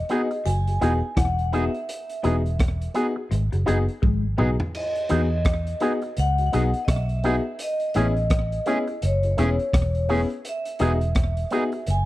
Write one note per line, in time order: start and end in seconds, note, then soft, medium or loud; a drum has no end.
0.00 0.42 D#5 loud
0.09 0.21 B3 medium
0.09 0.26 B3 medium
0.09 0.21 D#4 medium
0.09 0.25 D#4 medium
0.09 0.26 F#4 medium
0.09 0.21 G#4 loud
0.09 0.26 G#4 loud
0.09 closed hi-hat medium
0.31 muted clean electric guitar stroke soft
0.31 closed hi-hat soft
0.45 0.77 F#1 medium
0.45 0.67 F#3 medium
0.45 1.19 G#5 loud
0.45 closed hi-hat medium
0.67 0.73 F#4 soft
0.67 0.73 G#4 soft
0.67 closed hi-hat soft
0.81 1.00 E1 medium
0.81 0.94 E3 medium
0.81 0.92 B3 medium
0.81 0.97 B3 loud
0.81 0.92 D#4 medium
0.81 0.97 D#4 medium
0.81 0.97 F#4 medium
0.81 0.97 G#4 loud
0.81 0.93 G#4 medium
0.81 closed hi-hat medium
1.17 1.67 E1 medium
1.17 1.38 E3 medium
1.17 1.54 F#5 loud
1.17 kick loud
1.17 cross-stick loud
1.17 closed hi-hat loud
1.39 closed hi-hat soft
1.52 1.63 B3 medium
1.52 1.68 B3 loud
1.52 1.68 D#4 medium
1.52 1.64 D#4 medium
1.52 1.68 F#4 medium
1.52 1.68 G#4 loud
1.52 1.64 G#4 loud
1.52 2.56 E5 medium
1.52 closed hi-hat medium
1.74 closed hi-hat soft
1.89 closed hi-hat loud
2.10 closed hi-hat medium
2.23 2.87 E1 loud
2.23 2.45 E3 medium
2.23 2.39 B3 medium
2.23 2.34 B3 medium
2.23 2.39 D#4 medium
2.23 2.35 D#4 medium
2.23 2.39 F#4 medium
2.23 2.39 G#4 loud
2.23 2.35 G#4 medium
2.23 closed hi-hat medium
2.46 closed hi-hat soft
2.59 kick loud
2.59 cross-stick loud
2.59 closed hi-hat medium
2.82 closed hi-hat medium
2.94 3.06 B3 medium
2.94 3.11 B3 medium
2.94 3.06 D#4 medium
2.94 3.11 D#4 medium
2.94 3.11 F#4 medium
2.94 3.11 G#4 loud
2.94 3.06 G#4 medium
2.94 closed hi-hat medium
3.16 3.22 F#4 soft
3.16 3.22 G#4 soft
3.16 muted clean electric guitar stroke medium
3.31 3.50 G#1 medium
3.31 3.44 G#3 medium
3.31 closed hi-hat loud
3.52 3.66 F#1 medium
3.52 3.61 F#3 medium
3.52 3.58 F#4 soft
3.52 3.58 G#4 soft
3.52 closed hi-hat soft
3.66 3.86 F#1 loud
3.66 3.80 F#3 medium
3.66 3.77 B3 medium
3.66 3.82 B3 medium
3.66 3.82 D#4 medium
3.66 3.77 D#4 medium
3.66 3.82 F#4 medium
3.66 3.82 G#4 loud
3.66 3.78 G#4 loud
3.66 closed hi-hat medium
3.89 closed hi-hat soft
4.02 4.35 G#1 medium
4.02 4.24 G#3 medium
4.02 kick loud
4.02 high tom medium
4.37 4.58 B1 medium
4.37 4.53 B3 medium
4.37 4.49 B3 medium
4.37 4.51 B3 medium
4.37 4.53 D#4 medium
4.37 4.49 D#4 medium
4.37 4.54 F#4 medium
4.37 4.54 G#4 medium
4.37 4.49 G#4 loud
4.37 mid tom medium
4.60 floor tom medium
4.75 6.22 D#5 loud
4.75 crash medium
4.95 closed hi-hat medium
5.09 5.73 E2 medium
5.09 5.20 B3 medium
5.09 5.25 B3 medium
5.09 5.25 D#4 medium
5.09 5.21 D#4 medium
5.09 5.25 F#4 medium
5.09 5.25 G#4 loud
5.09 5.21 G#4 medium
5.09 closed hi-hat medium
5.45 kick loud
5.45 cross-stick loud
5.45 closed hi-hat medium
5.67 closed hi-hat medium
5.80 5.96 B3 medium
5.80 5.92 B3 medium
5.80 5.96 D#4 medium
5.80 5.92 D#4 medium
5.80 5.96 F#4 medium
5.80 5.96 G#4 loud
5.80 5.92 G#4 loud
5.80 closed hi-hat medium
6.02 6.08 F#4 soft
6.02 6.08 G#4 soft
6.02 muted clean electric guitar stroke soft
6.02 closed hi-hat soft
6.17 6.49 C#2 medium
6.17 6.80 F#5 loud
6.17 closed hi-hat loud
6.38 6.44 F#4 soft
6.38 6.44 G#4 soft
6.38 closed hi-hat soft
6.52 6.72 B1 loud
6.52 6.63 B3 medium
6.52 6.68 B3 loud
6.52 6.64 D#4 medium
6.52 6.68 D#4 medium
6.52 6.68 F#4 medium
6.52 6.68 G#4 loud
6.52 6.64 G#4 loud
6.52 closed hi-hat medium
6.74 closed hi-hat soft
6.85 7.39 B1 medium
6.85 6.89 D#5 medium
6.85 kick loud
6.85 cross-stick loud
6.85 closed hi-hat loud
6.90 7.56 E5 loud
7.09 closed hi-hat soft
7.24 7.35 B3 medium
7.24 7.39 B3 medium
7.24 7.35 D#4 loud
7.24 7.40 D#4 medium
7.24 7.40 F#4 medium
7.24 7.35 G#4 loud
7.24 7.40 G#4 loud
7.24 closed hi-hat medium
7.59 9.08 D#5 loud
7.59 closed hi-hat loud
7.80 closed hi-hat soft
7.94 8.59 A1 loud
7.94 8.06 A3 medium
7.94 8.11 B3 loud
7.94 8.11 C#4 medium
7.94 8.06 C#4 medium
7.94 8.11 E4 medium
7.94 8.11 G#4 loud
7.94 8.07 G#4 medium
7.94 closed hi-hat medium
8.17 closed hi-hat soft
8.30 kick loud
8.30 cross-stick loud
8.30 closed hi-hat medium
8.52 closed hi-hat medium
8.66 8.77 A3 medium
8.66 8.82 B3 medium
8.66 8.82 C#4 medium
8.66 8.77 C#4 medium
8.66 8.82 E4 medium
8.66 8.82 G#4 loud
8.66 8.78 G#4 loud
8.66 closed hi-hat medium
8.87 8.94 E4 soft
8.87 8.94 G#4 soft
8.87 muted clean electric guitar stroke soft
8.87 closed hi-hat soft
9.02 9.34 F#1 medium
9.02 10.07 C#5 medium
9.02 closed hi-hat medium
9.23 9.29 E4 soft
9.23 9.29 G#4 soft
9.23 closed hi-hat soft
9.37 9.57 E1 loud
9.37 9.48 A3 medium
9.37 9.53 B3 loud
9.37 9.49 C#4 loud
9.37 9.53 C#4 loud
9.37 9.53 E4 medium
9.37 9.49 G#4 loud
9.37 9.54 G#4 loud
9.37 closed hi-hat medium
9.59 closed hi-hat soft
9.73 10.24 E1 loud
9.73 kick loud
9.73 cross-stick loud
9.73 closed hi-hat medium
9.95 closed hi-hat soft
10.09 10.20 A3 medium
10.09 10.24 B3 medium
10.09 10.25 C#4 medium
10.09 10.20 C#4 medium
10.09 10.25 E4 medium
10.09 10.25 G#4 loud
10.09 10.21 G#4 loud
10.09 open hi-hat medium
10.30 closed hi-hat soft
10.45 11.94 E5 loud
10.45 closed hi-hat loud
10.65 closed hi-hat medium
10.79 11.44 E1 loud
10.79 10.95 B3 medium
10.79 10.91 B3 medium
10.79 10.95 D#4 medium
10.79 10.92 D#4 medium
10.79 10.96 F#4 medium
10.79 10.96 G#4 loud
10.79 10.92 G#4 loud
10.79 closed hi-hat medium
11.01 closed hi-hat soft
11.15 kick loud
11.15 cross-stick loud
11.15 closed hi-hat medium
11.37 closed hi-hat medium
11.50 11.62 B3 medium
11.50 11.67 B3 medium
11.50 11.63 D#4 medium
11.50 11.67 D#4 medium
11.50 11.68 F#4 medium
11.50 11.68 G#4 loud
11.50 11.63 G#4 loud
11.50 closed hi-hat medium
11.72 11.79 F#4 soft
11.72 11.79 G#4 soft
11.72 muted clean electric guitar stroke soft
11.72 closed hi-hat soft
11.87 12.05 F#1 loud
11.87 12.05 G#5 loud
11.87 closed hi-hat loud